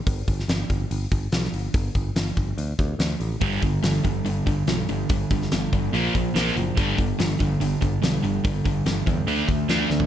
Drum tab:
HH |o-o-o-o-o-o-o-o-|o-o-o-o-o-o-o-o-|o-o-o-o-o-o-o-o-|o-o-o-o-o-o-o-o-|
SD |---oo-------oo--|----o-------o---|----o-------o---|---oo-------oo--|
FT |----------------|----------------|----------------|----------------|
BD |o-o---o---o-----|o-o---o---o-----|o-o---o---o-----|o-o---o---o-----|

HH |o-o-o-o-o-o-o-o-|o-o-o-o-o-o-o---|
SD |----o-------o---|----o-------o-o-|
FT |----------------|---------------o|
BD |o-o---o---o-----|o-o---o---o-----|